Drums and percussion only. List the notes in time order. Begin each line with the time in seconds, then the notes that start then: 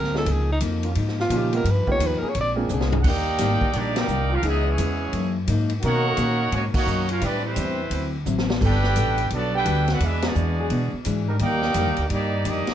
0.04 snare
0.15 snare
0.26 ride
0.60 hi-hat pedal, ride
0.83 ride
0.95 ride
1.08 snare
1.19 snare
1.30 hi-hat pedal, ride
1.53 ride
1.65 ride
1.87 kick
2.00 hi-hat pedal, ride
2.35 ride
2.69 hi-hat pedal
2.81 snare
2.92 floor tom
3.04 kick, crash
3.38 snare, hi-hat pedal, ride
3.61 kick
3.73 ride
3.96 snare, ride
4.08 hi-hat pedal
4.43 ride
4.78 hi-hat pedal, ride
5.13 ride
5.47 hi-hat pedal, ride
5.70 ride
5.82 ride
6.17 hi-hat pedal, ride
6.52 ride
6.74 kick, crash
6.87 hi-hat pedal
7.09 ride
7.21 ride
7.56 hi-hat pedal, ride
7.91 ride
8.26 hi-hat pedal
8.38 snare
8.50 snare
8.61 kick, crash
8.84 snare
8.96 hi-hat pedal, ride
9.18 ride
9.30 ride
9.65 hi-hat pedal, ride
9.88 snare, ride
10.00 ride
10.22 snare, ride
10.35 hi-hat pedal
10.70 ride
11.05 hi-hat pedal, ride
11.39 ride
11.62 snare
11.74 hi-hat pedal, ride
11.96 ride
12.10 ride
12.45 hi-hat pedal, ride
12.67 snare, ride